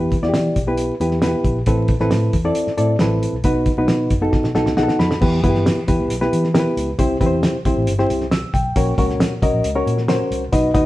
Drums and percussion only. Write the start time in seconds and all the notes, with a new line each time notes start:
0.12 kick, closed hi-hat
0.23 snare
0.34 snare, closed hi-hat
0.56 kick, closed hi-hat
0.78 closed hi-hat
1.01 closed hi-hat
1.11 snare
1.22 snare, closed hi-hat
1.44 kick, closed hi-hat
1.66 kick, closed hi-hat
1.88 kick, closed hi-hat
2.00 snare
2.11 snare, closed hi-hat
2.33 kick, closed hi-hat
2.55 closed hi-hat
2.67 snare
2.78 closed hi-hat
2.99 snare, closed hi-hat
3.23 closed hi-hat
3.44 kick, closed hi-hat
3.66 kick, closed hi-hat
3.88 snare, closed hi-hat
4.10 kick, closed hi-hat
4.33 kick, snare
4.44 snare
4.55 snare
4.66 snare
4.77 snare
4.88 snare
5.00 snare
5.11 snare
5.21 kick, crash
5.44 kick, closed hi-hat
5.55 snare
5.66 snare, closed hi-hat
5.88 kick, closed hi-hat
6.10 closed hi-hat
6.22 snare
6.33 closed hi-hat
6.44 snare
6.55 snare, closed hi-hat
6.77 closed hi-hat
6.99 kick, closed hi-hat
7.21 kick, closed hi-hat
7.43 snare, closed hi-hat
7.65 kick, closed hi-hat
7.87 closed hi-hat
7.99 snare
8.10 closed hi-hat
8.21 snare
8.31 snare, closed hi-hat
8.54 kick, closed hi-hat
8.76 kick, closed hi-hat
8.98 kick, closed hi-hat
9.10 snare
9.20 snare, closed hi-hat
9.42 kick, closed hi-hat
9.64 closed hi-hat
9.87 closed hi-hat
9.98 snare
10.08 snare, closed hi-hat
10.32 closed hi-hat
10.53 kick, closed hi-hat
10.75 kick, closed hi-hat